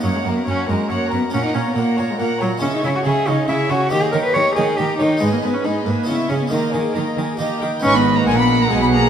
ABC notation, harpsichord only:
X:1
M:3/4
L:1/8
Q:1/4=138
K:F#mix
V:1 name="Harpsichord"
[A,C]6 | C6 | [K:G#m] [G,CE]6 | [A,D]6 |
[G,B,D]4 [G,CE]2 | [G,A,D]4 [A,D]2 | [G,B,D]6 |]
V:2 name="Harpsichord" clef=bass
F,, F,, F,, F,, F,, F,, | A,, A,, A,, A,, A,, A,, | [K:G#m] C, C, C, C, C, C, | D, D, D, D, D, D, |
G,, G,, G,, G,, C, C, | D, D, D, D, D, D, | G,,2 A,,2 B,,2 |]